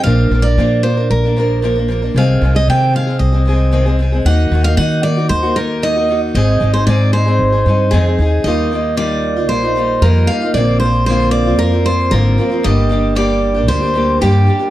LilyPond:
<<
  \new Staff \with { instrumentName = "Steel-string acoustic guitar" } { \time 4/4 \key ees \major \tempo 4 = 114 f''8. d''8. c''8 bes'4 r4 | f''8. ees''16 g''8 f''8 ees''4. r8 | ges''8. f''16 ges''8 d''8 c''8 bes'8 ees''8. r16 | ees''8. c''16 d''8 c''4. aes'4 |
ees''4 d''4 c''4 bes'8 f''8 | d''8 c''8 c''8 d''8 bes'8 c''8 bes'4 | ees''4 d''4 c''4 g'4 | }
  \new Staff \with { instrumentName = "Steel-string acoustic guitar" } { \time 4/4 \key ees \major <bes, f bes d' bes'>8 <f bes d' bes'>16 <bes d' bes'>16 <bes, f bes d' bes'>8 <f bes d' bes'>16 <bes d' bes'>8 <bes d' bes'>16 <f bes d' bes'>8 <bes, f bes d' bes'>16 <bes d' bes'>16 <f bes d' bes'>16 <bes d' bes'>16 | <c ees aes c' aes'>8 <ees aes c' aes'>16 <aes c' aes'>16 <c ees aes c' aes'>8 <ees aes c' aes'>16 <aes c' aes'>8 <aes c' aes'>16 <ees aes c' aes'>8 <c ees aes c' aes'>16 <aes c' aes'>16 <ees aes c' aes'>16 <aes c' aes'>16 | <ees bes ees' ges'>8 <ees bes ees' ges'>16 <bes ees' ges'>16 <ees bes ees' ges'>8 <ees bes ees' ges'>16 <bes ees' ges'>8 <bes ees' ges'>16 <ees bes ees' ges'>8 <ees bes ees' ges'>16 <bes ees' ges'>16 <ees bes ees' ges'>8 | <aes, ees aes c' ees' aes'>8 <aes c' ees' aes'>16 <aes c' ees' aes'>16 <aes, ees aes c' ees' aes'>8 <aes c' ees' aes'>16 <aes c' ees' aes'>8 <aes c' ees' aes'>16 <aes c' ees' aes'>8 <aes, ees aes c' ees' aes'>16 <aes c' ees' aes'>16 <aes c' ees' aes'>8 |
<ees g bes ees' f'>8 <g bes ees' f'>8 <ees g bes ees' f'>8. <bes ees' f'>16 <g bes ees' f'>16 <bes ees' f'>16 <g bes ees' f'>8 <ees g bes ees' f'>8 <g bes ees' f'>16 <bes ees' f'>16 | <bes, d f bes c' f'>8 <f bes c' f'>8 <bes, d f bes c' f'>8. <f bes c' f'>16 <f bes c' f'>16 <f bes c' f'>16 <f bes c' f'>8 <bes, d f bes c' f'>8 <f bes c' f'>16 <f bes c' f'>16 | <g, d g bes d' g'>8 <g bes d' g'>8 <g, d g bes d' g'>8. <g bes d' g'>16 <g bes d' g'>16 <g bes d' g'>16 <g bes d' g'>8 <g, d g bes d' g'>8 <g bes d' g'>16 <g bes d' g'>16 | }
  \new Staff \with { instrumentName = "Upright bass" } { \clef bass \time 4/4 \key ees \major bes,,8 bes,,8 bes,4 bes,,2 | c,8 c,8 c4 c,2 | ees,8 ees,8 ees4 ees,2 | aes,,8 aes,,8 aes,4 aes,,8 g,8 f,8 ees,8 |
ees,2 bes,,4 f,8 r8 | bes,,2 f,4 aes,,8 r8 | g,,2 d,4 g,8 r8 | }
>>